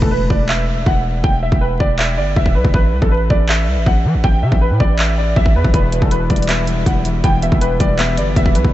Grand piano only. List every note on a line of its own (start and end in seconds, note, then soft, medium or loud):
0.02 0.10 A4 medium
0.11 0.26 B4 medium
0.30 0.45 D5 medium
0.49 0.84 E5 medium
0.87 1.01 F#5 medium
1.24 1.39 G5 loud
1.43 1.57 E5 medium
1.61 1.76 B4 medium
1.80 1.95 D5 medium
1.99 2.14 E5 medium
2.18 2.32 D5 medium
2.37 2.51 E5 medium
2.55 2.70 B4 medium
2.74 3.01 B4 medium
3.02 3.10 A4 medium
3.11 3.26 B4 medium
3.30 3.45 D5 medium
3.49 3.84 E5 medium
3.87 4.01 F#5 medium
4.24 4.39 G5 loud
4.43 4.58 E5 medium
4.61 4.76 B4 medium
4.80 4.95 D5 medium
4.99 5.14 E5 medium
5.18 5.33 D5 medium
5.36 5.51 E5 medium
5.56 5.70 B4 medium
5.74 6.01 B4 medium
6.02 6.10 A4 medium
6.11 6.26 B4 medium
6.30 6.45 D5 medium
6.49 6.84 E5 medium
6.87 7.01 F#5 medium
7.24 7.39 G5 loud
7.43 7.58 E5 medium
7.61 7.76 B4 medium
7.80 7.95 D5 medium
7.99 8.13 E5 medium
8.18 8.32 D5 medium
8.37 8.51 E5 medium
8.55 8.70 B4 medium